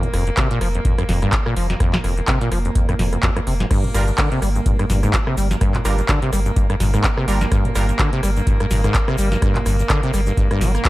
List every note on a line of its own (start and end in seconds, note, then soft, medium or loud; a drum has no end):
0.00 0.09 D#2 medium
0.00 3.69 A#3 medium
0.00 closed hi-hat soft
0.00 mid tom medium
0.14 0.31 F1 loud
0.14 0.25 F2 medium
0.14 cross-stick soft
0.14 open hi-hat loud
0.27 0.30 F2 medium
0.27 closed hi-hat soft
0.37 0.48 C3 loud
0.37 kick loud
0.37 cross-stick medium
0.37 clap loud
0.37 closed hi-hat loud
0.51 0.59 A#2 loud
0.51 closed hi-hat soft
0.61 0.78 F1 loud
0.61 0.69 F3 medium
0.61 cross-stick soft
0.61 open hi-hat loud
0.75 0.80 F2 medium
0.75 closed hi-hat soft
0.85 0.96 F2 medium
0.85 kick loud
0.85 closed hi-hat loud
0.85 mid tom medium
0.98 1.04 F2 loud
0.98 cross-stick medium
0.98 closed hi-hat soft
1.09 1.26 F1 loud
1.09 1.20 F2 medium
1.09 snare soft
1.09 mid tom medium
1.09 open hi-hat loud
1.22 1.34 G2 loud
1.22 cross-stick soft
1.22 closed hi-hat soft
1.32 1.37 F1 medium
1.32 kick loud
1.32 clap loud
1.32 closed hi-hat medium
1.46 1.55 A#2 loud
1.46 cross-stick medium
1.56 1.73 F1 loud
1.56 1.68 F3 medium
1.56 open hi-hat loud
1.70 1.76 F2 medium
1.70 snare soft
1.70 closed hi-hat soft
1.80 1.95 F2 loud
1.80 kick loud
1.80 cross-stick medium
1.80 closed hi-hat medium
1.94 1.99 D#2 medium
1.94 snare medium
1.94 clap soft
1.94 closed hi-hat soft
1.94 mid tom medium
2.04 2.21 F1 loud
2.04 2.15 F2 medium
2.04 cross-stick soft
2.04 open hi-hat loud
2.17 2.21 F2 medium
2.17 closed hi-hat soft
2.28 2.39 C3 loud
2.28 kick loud
2.28 cross-stick medium
2.28 clap loud
2.28 closed hi-hat loud
2.41 2.50 A#2 loud
2.41 closed hi-hat soft
2.52 2.69 F1 medium
2.52 2.59 F3 medium
2.52 cross-stick soft
2.52 open hi-hat loud
2.65 2.71 F2 medium
2.65 closed hi-hat soft
2.75 2.87 F2 medium
2.75 kick loud
2.75 closed hi-hat loud
2.89 2.95 F2 loud
2.89 cross-stick medium
2.89 closed hi-hat soft
2.89 mid tom medium
2.99 3.16 F1 medium
2.99 3.10 F2 medium
2.99 snare soft
2.99 mid tom medium
2.99 open hi-hat loud
3.13 3.18 F2 medium
3.13 cross-stick soft
3.13 closed hi-hat soft
3.23 3.30 F2 loud
3.23 kick loud
3.23 clap loud
3.23 closed hi-hat loud
3.37 3.40 F2 loud
3.37 cross-stick medium
3.37 closed hi-hat soft
3.47 3.64 F1 medium
3.47 3.54 C3 medium
3.47 open hi-hat loud
3.60 3.66 G#2 medium
3.60 snare soft
3.60 closed hi-hat soft
3.71 3.86 G2 loud
3.71 10.89 A#3 medium
3.71 kick loud
3.71 cross-stick medium
3.71 closed hi-hat loud
3.71 crash medium
3.71 shaker soft
3.84 3.90 F2 medium
3.84 closed hi-hat soft
3.84 mid tom medium
3.94 4.12 G1 loud
3.94 4.06 G2 medium
3.94 4.04 G3 loud
3.94 4.04 D4 medium
3.94 4.04 F4 medium
3.94 4.04 A#4 loud
3.94 cross-stick soft
3.94 open hi-hat loud
3.94 shaker loud
4.08 4.11 G2 medium
4.08 closed hi-hat soft
4.08 shaker medium
4.18 4.29 D3 loud
4.18 kick loud
4.18 cross-stick medium
4.18 clap loud
4.18 closed hi-hat loud
4.18 shaker soft
4.32 4.40 C3 loud
4.32 closed hi-hat soft
4.42 4.59 G1 medium
4.42 4.49 G3 medium
4.42 cross-stick soft
4.42 open hi-hat loud
4.42 shaker medium
4.55 4.61 G2 medium
4.55 closed hi-hat soft
4.55 shaker medium
4.66 4.77 G2 medium
4.66 kick loud
4.66 closed hi-hat loud
4.66 mid tom medium
4.66 shaker soft
4.79 4.85 G2 loud
4.79 cross-stick medium
4.79 closed hi-hat soft
4.90 5.07 G1 loud
4.90 5.01 G2 medium
4.90 snare soft
4.90 mid tom loud
4.90 open hi-hat loud
4.90 shaker medium
5.03 5.15 G#2 loud
5.03 cross-stick soft
5.03 closed hi-hat soft
5.03 shaker medium
5.13 5.18 G1 medium
5.13 kick loud
5.13 clap loud
5.13 closed hi-hat medium
5.13 shaker soft
5.27 5.35 C3 loud
5.27 cross-stick medium
5.37 5.54 G1 loud
5.37 5.48 G3 medium
5.37 open hi-hat loud
5.37 shaker medium
5.51 5.56 G2 medium
5.51 snare soft
5.51 closed hi-hat soft
5.51 shaker medium
5.61 5.76 G2 loud
5.61 kick loud
5.61 cross-stick medium
5.61 closed hi-hat loud
5.61 shaker soft
5.74 5.80 F2 medium
5.74 clap soft
5.74 closed hi-hat soft
5.74 mid tom loud
5.85 6.02 G1 loud
5.85 5.96 G2 medium
5.85 6.00 G3 medium
5.85 6.00 D4 medium
5.85 6.00 F4 medium
5.85 6.00 A#4 loud
5.85 cross-stick soft
5.85 open hi-hat loud
5.85 shaker loud
5.98 6.02 G2 medium
5.98 closed hi-hat soft
5.98 shaker medium
6.08 6.20 D3 loud
6.08 kick loud
6.08 cross-stick medium
6.08 clap loud
6.08 closed hi-hat medium
6.08 shaker soft
6.22 6.31 C3 loud
6.22 closed hi-hat soft
6.33 6.50 G1 loud
6.33 6.40 G3 medium
6.33 cross-stick soft
6.33 open hi-hat loud
6.33 shaker loud
6.45 6.52 G2 medium
6.45 closed hi-hat soft
6.45 shaker medium
6.56 6.67 G2 medium
6.56 kick loud
6.56 closed hi-hat medium
6.56 shaker soft
6.70 6.76 G2 loud
6.70 cross-stick medium
6.70 closed hi-hat soft
6.80 6.97 G1 loud
6.80 6.91 G2 medium
6.80 snare soft
6.80 mid tom loud
6.80 open hi-hat loud
6.80 shaker medium
6.94 7.05 G#2 medium
6.94 cross-stick soft
6.94 closed hi-hat soft
6.94 shaker medium
7.04 7.08 G1 medium
7.04 kick loud
7.04 clap loud
7.04 closed hi-hat medium
7.04 shaker soft
7.17 7.26 C3 loud
7.17 cross-stick medium
7.28 7.45 G1 loud
7.28 7.39 G3 medium
7.28 7.43 G3 loud
7.28 7.43 D4 medium
7.28 7.43 F4 medium
7.28 7.43 A#4 loud
7.28 open hi-hat loud
7.28 shaker loud
7.41 7.47 G2 medium
7.41 snare soft
7.41 closed hi-hat soft
7.41 shaker medium
7.52 7.67 G2 loud
7.52 kick loud
7.52 cross-stick medium
7.52 closed hi-hat medium
7.52 shaker soft
7.65 7.71 F2 medium
7.65 closed hi-hat soft
7.65 mid tom loud
7.75 7.93 G1 loud
7.75 7.86 G2 medium
7.75 7.85 G3 loud
7.75 7.85 D4 medium
7.75 7.85 F4 medium
7.75 7.85 A#4 loud
7.75 cross-stick soft
7.75 open hi-hat loud
7.75 shaker loud
7.89 7.92 G2 medium
7.89 closed hi-hat soft
7.89 shaker medium
7.99 8.10 D3 loud
7.99 kick loud
7.99 cross-stick medium
7.99 clap loud
7.99 closed hi-hat medium
7.99 shaker soft
8.13 8.21 C3 loud
8.13 closed hi-hat soft
8.23 8.40 G1 medium
8.23 8.30 G3 medium
8.23 cross-stick soft
8.23 open hi-hat loud
8.23 shaker loud
8.37 8.42 G2 medium
8.37 closed hi-hat soft
8.37 shaker medium
8.47 8.58 G2 medium
8.47 kick loud
8.47 closed hi-hat medium
8.47 mid tom loud
8.47 shaker soft
8.60 8.66 G2 loud
8.60 cross-stick medium
8.60 closed hi-hat soft
8.71 8.88 G1 loud
8.71 8.82 G2 medium
8.71 snare soft
8.71 mid tom medium
8.71 open hi-hat loud
8.71 shaker loud
8.84 8.96 G#2 loud
8.84 cross-stick soft
8.84 closed hi-hat soft
8.84 shaker medium
8.94 8.99 G1 medium
8.94 kick loud
8.94 clap loud
8.94 closed hi-hat medium
8.94 shaker soft
9.08 9.16 C3 loud
9.08 cross-stick medium
9.18 9.35 G1 loud
9.18 9.29 G3 medium
9.18 open hi-hat loud
9.18 shaker loud
9.32 9.37 G2 medium
9.32 snare soft
9.32 closed hi-hat soft
9.32 shaker soft
9.42 9.57 G2 loud
9.42 kick loud
9.42 cross-stick medium
9.42 closed hi-hat medium
9.42 shaker soft
9.55 9.61 F2 medium
9.55 clap soft
9.55 closed hi-hat soft
9.55 mid tom medium
9.66 9.83 G1 loud
9.66 9.77 G2 medium
9.66 cross-stick soft
9.66 open hi-hat loud
9.66 shaker medium
9.79 9.83 G2 medium
9.79 closed hi-hat soft
9.79 shaker medium
9.90 10.01 D3 loud
9.90 kick loud
9.90 cross-stick medium
9.90 clap loud
9.90 closed hi-hat medium
9.90 shaker soft
10.03 10.12 C3 loud
10.03 closed hi-hat soft
10.14 10.31 G1 loud
10.14 10.21 G3 medium
10.14 cross-stick soft
10.14 open hi-hat loud
10.14 shaker loud
10.26 10.33 G2 medium
10.26 closed hi-hat soft
10.26 shaker medium
10.37 10.48 G2 medium
10.37 kick loud
10.37 closed hi-hat medium
10.37 shaker soft
10.51 10.63 G2 loud
10.51 cross-stick medium
10.51 closed hi-hat soft
10.61 10.78 G1 loud
10.61 10.72 G3 loud
10.61 snare soft
10.61 mid tom loud
10.61 open hi-hat loud
10.61 shaker medium
10.75 10.83 A#3 medium
10.75 cross-stick soft
10.75 closed hi-hat soft
10.75 shaker medium
10.84 10.89 G2 medium
10.84 kick loud
10.84 clap loud
10.84 closed hi-hat medium
10.84 shaker soft